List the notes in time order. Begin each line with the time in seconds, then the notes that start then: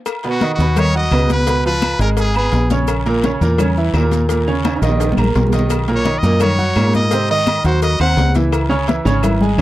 0.06 cowbell, high conga, low agogo, long guiro, claves, maracas
0.24 B2 B3 B4, cowbell, high conga, maracas
0.30 F#4
0.41 D#3 D#4 D#5, cowbell, high conga, low timbale, low agogo, short guiro, maracas
0.54 F#4, high conga
0.58 D#2 B2 B3 B4, short guiro, maracas
0.76 D#3 D#4 C#5 D#5, cowbell, high conga, low conga, low agogo, long guiro, claves, maracas
0.94 F#3 F#4 D#5 F#5, high conga, maracas
1.11 C#2 B2 B3 B4, cowbell, high conga, low timbale, low agogo, short guiro, claves, maracas
1.29 B4, cowbell, high conga, short guiro, maracas
1.47 B2 B3 B4, cowbell, low agogo, long guiro, maracas
1.66 F3 F4 B4 F5, high conga, maracas
1.82 cowbell, high conga, low timbale, low agogo, short guiro, claves, maracas
1.99 G#1 G#3 G#4 A#4 G#5, cowbell, high conga, short guiro, maracas
2.17 G#4, cowbell, high conga, low agogo, long guiro, maracas
2.34 B3 G#4 B4 B5, cowbell, high conga, low agogo, claves, maracas
2.52 A#1, cowbell, high conga, low timbale, short guiro, maracas
2.70 C#3 C#4 C#5, cowbell, high conga, short guiro, maracas
2.88 cowbell, low agogo, long guiro, claves, maracas
3.06 A#2 A#3 A#4, cowbell, high conga, maracas
3.23 C#3 C#4 C#5, cowbell, high conga, low timbale, low agogo, short guiro, maracas
3.41 E2 A#2 A#3 A#4, high conga, short guiro, maracas
3.58 C#3 C#4 C#5, cowbell, high conga, low conga, low agogo, long guiro, claves, maracas
3.77 E3 E4 E5, high conga, maracas
3.93 D#2 A#2 A#3 A#4, cowbell, low timbale, low agogo, short guiro, claves, maracas
4.11 cowbell, high conga, short guiro, maracas
4.29 A#2 A#3 A#4, cowbell, high conga, low agogo, long guiro, maracas
4.47 C#3 C#4 C#5, high conga, maracas
4.64 cowbell, high conga, high timbale, low agogo, short guiro, claves, maracas
4.76 high timbale
4.82 A#1 D#3 D#4 D#5, cowbell, short guiro, maracas
4.89 low timbale
5.00 cowbell, high timbale, low agogo, long guiro, maracas
5.12 low conga, low timbale
5.17 A#1 A#3 A#4 A#5, cowbell, low agogo, claves, maracas
5.24 low conga
5.35 B1, cowbell, low conga, low timbale, short guiro, maracas
5.47 low conga, low timbale
5.52 D#3 D#4 D#5, cowbell, short guiro, maracas
5.59 low conga, low timbale
5.70 cowbell, high conga, low agogo, long guiro, claves, maracas
5.88 A#2 A#3 A#4, cowbell, high conga, maracas
5.95 C#5
6.04 D#3 D#4 D#5, cowbell, high conga, low timbale, low agogo, short guiro, maracas
6.18 D#5
6.23 F#2 A#2 A#3 A#4, high conga, short guiro, maracas
6.40 D#3 D#4 C#5 D#5, cowbell, high conga, low conga, low agogo, long guiro, claves, maracas
6.58 F#3 F#4 F#5, high conga, low conga, maracas
6.76 G#2 A#2 A#3 A#4, cowbell, high conga, low timbale, low agogo, short guiro, claves, maracas
6.94 D#5, cowbell, high conga, short guiro, maracas
7.11 C3 C4 C5, cowbell, high conga, low agogo, long guiro, maracas
7.29 D#3 D#4 D#5, high conga, maracas
7.46 cowbell, high conga, low timbale, low agogo, short guiro, claves, maracas
7.64 D#2 F#3 F#4 C5 F#5, cowbell, high conga, short guiro, maracas
7.82 D#5, cowbell, high conga, low agogo, long guiro, maracas
8.00 D#2 C4 C5 F#5 C6, cowbell, high conga, low agogo, claves, maracas
8.17 C#2, cowbell, high conga, low timbale, short guiro, maracas
8.34 E3 E4 E5, cowbell, high conga, short guiro, maracas
8.52 cowbell, low agogo, long guiro, claves, maracas
8.69 C#3 C#4 C#5, cowbell, high conga, maracas
8.87 E3 E4 E5, cowbell, high conga, low timbale, low agogo, short guiro, maracas
9.05 G#1 C#3 C#4 C#5, high conga, short guiro, maracas
9.22 E3 E4 E5, cowbell, high conga, low conga, low agogo, long guiro, claves, maracas
9.41 G#3 G#4 G#5, high conga, low conga, maracas
9.58 D#2 C#3 C#4